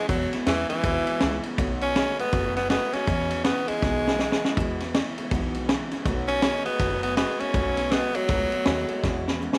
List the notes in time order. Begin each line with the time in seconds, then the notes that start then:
0.08 E2 B2 E3 F#3 G#3 B3 E4, kick, ride
0.33 E3 G#3 B3 E4, muted upright bass stroke, snare, ride
0.46 E2 C#3 E3 G#3 B3, snare, ride
0.51 E4
0.69 E2 C#3 E3 G#3 B3 E4, muted upright bass stroke, ride
0.84 D#2 E2 B2 E3 G#3 B3 E4, kick, ride
1.07 E3 G#3 B3 E4, muted upright bass stroke, ride
1.20 C#2 E2 C#3 E3 G#3 B3, snare, ride
1.24 E4
1.43 E2 C#3 E3 G#3 B3 E4, muted upright bass stroke, ride
1.57 B1 B2 D#3 F#3 A3 B3 F#4, kick, ride
1.81 B3 C#4 F#4, ride
1.85 A3
1.96 B2 D#3 G#3 A3 B3 F#4, snare, ride
2.19 B2 G#3 A3 B3 F#4, muted upright bass stroke, ride
2.33 F#1 B2 D#3 F#3 A3 B3 F#4, kick, snare, ride
2.57 A3 B3 F#4, snare, ride
2.70 B2 D#3 G#3 A3 B3 F#4, snare, ride
2.93 B2 G#3 A3 B3 C#4 F#4, muted upright bass stroke, snare, ride
3.07 E2 B2 E3 G#3 B3 E4, kick, ride
3.31 E3 G#3 B3 E4, ride
3.44 E2 C#3 E3 G#3 B3 E4, snare, ride
3.68 E2 C#3 E3 G#3 B3 E4, muted upright bass stroke, ride
3.82 B1 E2 B2 E3 G#3 B3 E4, kick, snare
4.07 E3 G#3 B3 E4, snare
4.19 E2 C#3 E3, snare
4.23 G#3 B3 E4
4.32 snare
4.43 E2 C#3 B3 E4, muted upright bass stroke, snare
4.47 E3 G#3
4.57 E2 B2 E3 G#3 B3 E4, kick, ride
4.80 G#3 B3 E4, snare, ride
4.85 E3
4.94 E2 C#3 E3 G#3 B3 E4, snare, ride
5.17 E2 C#3 E3 G#3 B3 E4, muted upright bass stroke, ride
5.31 B1 E2 B2 E3 G#3 B3 E4, kick, ride
5.55 G#3 B3 E4, ride
5.59 E3
5.68 E2 C#3 E3 G#3 B3, snare, ride
5.73 E4
5.91 E2 C#3 B3 E4, muted upright bass stroke, snare, ride
5.95 E3 G#3
6.05 B1 B2 D#3 F#3 A3 B3 F#4, kick, ride
6.28 A3 B3 C#4 F#4, ride
6.42 B2 D#3 G#3 A3 B3 F#4, snare, ride
6.65 B2 G#3 A3 B3 F#4, muted upright bass stroke, ride
6.80 F#1 B2 D#3 F#3 A3 B3 F#4, kick, snare, ride
7.02 A3 B3 F#4, ride
7.17 B2 D#3 G#3 A3 B3 F#4, snare, ride
7.40 B2 G#3 A3 B3 C#4 F#4, muted upright bass stroke, ride
7.54 B1 B2 D#3 F#3 A3 B3 F#4, kick, ride
7.77 A3 B3 F#4, snare, ride
7.91 B2 D#3 G#3 A3 B3 F#4, snare, ride
8.13 B2 F#3 G#3 A3 B3 F#4, muted upright bass stroke, ride
8.28 C#2 B2 D#3 F#3 A3 B3 F#4, kick, snare, ride
8.52 A3 B3 F#4, muted upright bass stroke, ride
8.65 D#2 B2 D#3 G#3 A3 B3 F#4, snare, ride
8.89 B2 G#3 B3 F#4, muted upright bass stroke, ride
8.93 A3
9.02 E2 B2 E3 G#3 B3 E4, kick, snare
9.28 E3 G#3 B3 E4, snare
9.39 E2 C#3 E3 G#3
9.43 B3 E4
9.53 snare